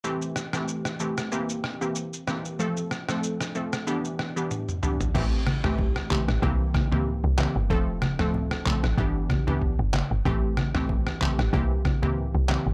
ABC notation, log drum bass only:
X:1
M:4/4
L:1/16
Q:"Swing 16ths" 1/4=94
K:Am
V:1 name="Log drum bass" clef=bass
z16 | z16 | A,,,6- A,,, A,,, C,,3 z2 C,,2 G,,, | F,,,6- F,,, A,,, G,,,3 z2 G,,,2 G,,, |
A,,,6- A,,, A,,, C,,3 z2 C,,2 G,,, |]